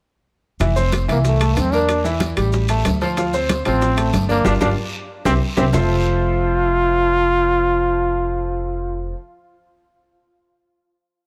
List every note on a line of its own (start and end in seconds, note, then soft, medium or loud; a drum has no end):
0.60 1.05 F1 medium
0.60 0.74 E3 medium
0.60 0.74 E4 medium
0.60 high bongo medium
0.60 high conga soft
0.60 high timbale medium
0.60 long guiro medium
0.60 maracas medium
0.76 1.03 C4 medium
0.76 1.03 C5 medium
0.76 high bongo soft
0.76 high conga soft
0.76 maracas medium
0.92 high bongo medium
0.92 high conga medium
0.92 high timbale medium
0.92 short guiro medium
0.92 maracas medium
1.08 1.53 C2 medium
1.08 1.35 E3 medium
1.08 1.18 A#3 medium
1.08 1.35 E4 medium
1.08 high bongo soft
1.08 high conga soft
1.08 high timbale medium
1.08 short guiro medium
1.08 maracas soft
1.24 1.60 A3 medium
1.24 high bongo medium
1.24 high conga soft
1.24 long guiro medium
1.24 maracas medium
1.40 1.67 A3 medium
1.40 1.67 A4 medium
1.40 high bongo soft
1.40 high conga soft
1.40 high timbale medium
1.40 maracas medium
1.56 2.31 E2 medium
1.56 1.74 C4 medium
1.56 high bongo soft
1.56 low bongo medium
1.56 high conga medium
1.56 high timbale medium
1.56 short guiro medium
1.56 maracas medium
1.72 1.99 A#3 medium
1.72 2.05 D4 loud
1.72 1.99 A#4 medium
1.72 short guiro medium
1.72 maracas soft
1.88 high bongo medium
1.88 high conga soft
1.88 high timbale medium
1.88 long guiro medium
1.88 maracas medium
2.04 2.31 E3 medium
2.04 2.32 E4 medium
2.04 high bongo soft
2.04 high conga soft
2.04 maracas medium
2.20 high bongo medium
2.20 high conga medium
2.20 high timbale medium
2.20 short guiro medium
2.20 maracas medium
2.37 2.82 A1 medium
2.37 2.63 G3 medium
2.37 2.63 G4 medium
2.37 high bongo soft
2.37 high conga soft
2.37 high timbale medium
2.37 short guiro medium
2.37 maracas soft
2.52 high bongo medium
2.52 high conga soft
2.52 long guiro medium
2.52 maracas medium
2.68 2.96 A3 medium
2.68 2.96 A4 medium
2.68 high bongo soft
2.68 high conga soft
2.68 high timbale medium
2.68 maracas medium
2.85 3.60 D2 medium
2.85 high bongo soft
2.85 low bongo medium
2.85 high conga medium
2.85 high timbale medium
2.85 low timbale medium
2.85 short guiro medium
2.85 maracas medium
3.01 3.15 F3 medium
3.01 3.15 F4 medium
3.01 high conga soft
3.01 short guiro medium
3.01 maracas soft
3.17 3.31 F3 medium
3.17 3.31 F4 medium
3.17 high bongo medium
3.17 high conga soft
3.17 high timbale medium
3.17 long guiro medium
3.17 maracas medium
3.33 3.60 C4 medium
3.33 3.60 C5 medium
3.33 high bongo soft
3.33 high conga soft
3.33 maracas medium
3.49 high bongo medium
3.49 high conga medium
3.49 high timbale medium
3.49 short guiro medium
3.49 maracas medium
3.65 4.10 A1 medium
3.65 3.92 F3 medium
3.65 4.10 C4 medium
3.65 3.92 F4 medium
3.65 high bongo soft
3.65 high conga soft
3.65 high timbale medium
3.65 short guiro medium
3.65 maracas soft
3.81 high bongo medium
3.81 high conga soft
3.81 long guiro medium
3.81 maracas medium
3.97 4.23 A3 medium
3.97 4.24 A4 medium
3.97 high bongo soft
3.97 high conga soft
3.97 high timbale medium
3.97 maracas medium
4.13 4.44 G1 medium
4.13 high bongo soft
4.13 low bongo medium
4.13 high conga medium
4.13 high timbale medium
4.13 short guiro medium
4.13 maracas medium
4.29 4.44 A#3 medium
4.29 4.42 D4 medium
4.29 4.42 D5 medium
4.29 high conga medium
4.29 short guiro medium
4.29 maracas soft
4.45 4.58 G1 medium
4.45 4.55 D4 medium
4.45 4.55 F4 medium
4.45 4.55 G4 medium
4.45 high bongo medium
4.45 high conga medium
4.45 high timbale medium
4.45 long guiro medium
4.45 maracas medium
4.61 4.74 G1 medium
4.61 4.71 D4 medium
4.61 4.69 D4 medium
4.61 4.71 F4 medium
4.61 4.71 G4 medium
4.61 high bongo medium
4.61 high conga medium
4.61 high timbale medium
4.61 long guiro loud
4.61 maracas loud
5.25 5.38 C2 medium
5.25 5.33 C4 medium
5.25 5.36 C4 medium
5.25 5.36 E4 medium
5.25 5.36 G4 medium
5.25 high bongo loud
5.25 high conga medium
5.25 high timbale loud
5.25 long guiro medium
5.25 maracas medium
5.57 5.70 C2 medium
5.57 5.67 C4 medium
5.57 5.66 C4 medium
5.57 5.67 E4 medium
5.57 5.67 G4 medium
5.57 high bongo medium
5.57 high conga medium
5.57 high timbale medium
5.57 long guiro medium
5.57 maracas medium
5.73 9.12 F1 medium
5.73 9.11 F3 medium
5.73 9.11 C4 medium
5.73 9.05 F4 medium
5.73 9.12 F4 medium
5.73 9.12 A4 medium
5.73 9.12 C5 medium
5.73 9.12 E5 medium
5.73 low bongo medium
5.73 low conga loud
5.73 low timbale medium
5.73 long guiro medium
5.73 maracas medium